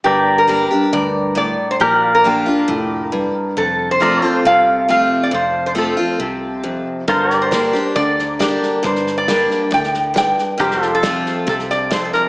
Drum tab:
HH |----------------|----------------|----------------|----------------|
SD |----------------|----------------|----------------|----------------|
BD |----------------|----------------|----------------|----------------|

HH |----p-------p---|----p-------p---|----p-------p---|
SD |o-o-o-o-o-o-o-o-|ooo-o-o-ooo-o-o-|ooo-o-o-ooo-o-o-|
BD |o---o---o---o---|o---o---o---o---|o---o---o---o---|